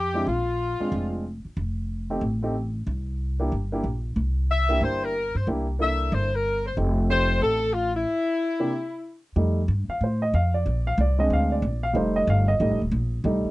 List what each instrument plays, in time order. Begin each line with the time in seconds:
Already playing: upright bass F2, saxophone section G4
0.14 grand piano G#3 C4 D4 E4
0.27 upright bass A#1, saxophone section F4
0.80 grand piano G#3 C4 D4 F4, muted upright bass stroke
0.92 upright bass F1
1.45 muted upright bass stroke
1.57 upright bass F1
2.10 grand piano A3 C4 D#4 G4
2.21 upright bass A1
2.42 grand piano A3 C4 D#4 G4
2.87 upright bass C2
3.40 grand piano A#3 D4 E4 G4
3.52 upright bass G1
3.72 grand piano A#3 D4 E4 G4
3.84 upright bass A#1
4.16 upright bass C2
4.51 saxophone section E5
4.69 grand piano A#3 D4 E4 G4
4.81 upright bass G1, saxophone section C5
5.04 saxophone section A#4
5.35 upright bass G2, saxophone section C5
5.47 upright bass C2, grand piano A#3 D4 E4 G4
5.79 grand piano A#3 D4 E4 A4, saxophone section E5
6.12 upright bass G1, saxophone section C5
6.35 saxophone section A#4
6.66 saxophone section C5
6.77 upright bass F1, grand piano A3 C4 D#4 G4
7.09 grand piano A3 C4 D#4 G4, saxophone section C5
7.41 upright bass A1, saxophone section A4
7.73 saxophone section F4
7.95 saxophone section E4
8.60 grand piano C3 A#3 D4 E4 G4
9.36 upright bass F2, grand piano G3 A3 D#4
9.68 upright bass G2
9.88 grand piano F5, muted upright bass stroke
10.01 upright bass A2, grand piano C5
10.22 grand piano D#5
10.34 upright bass F2, grand piano F5
10.54 grand piano D5
10.66 upright bass A#1
10.87 grand piano F5
10.98 upright bass C2, grand piano D5
11.18 grand piano G#3 C4 D4 D#5
11.30 upright bass D2, grand piano F5
11.52 grand piano D5
11.62 upright bass A#1
11.83 grand piano F5
11.93 upright bass F1, grand piano G3 A3 D#4 C5
12.16 grand piano D#5
12.27 upright bass G1, grand piano F5
12.48 grand piano D#5
12.60 upright bass A1, grand piano G3 A3 D#4
12.71 upright bass F1
12.81 upright bass D#1
12.91 upright bass A#1
13.24 upright bass C2, grand piano G3 A3 D#4
13.45 muted upright bass stroke